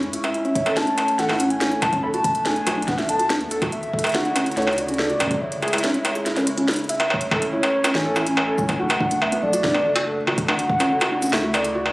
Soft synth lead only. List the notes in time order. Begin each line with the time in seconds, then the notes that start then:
0.34 E5
0.77 A5
1.19 F#5
1.50 G#5
1.82 A5
2.03 B5
2.14 A5
2.45 G#5
2.88 F#5
2.98 E5
3.09 A5
3.72 E5
4.15 F#5
4.57 C#5
4.78 D5
5.41 E5
7.53 C#5
7.95 G#5
8.80 F#5
9.22 E5
9.43 D5
10.49 F#5
11.33 E5
11.54 D5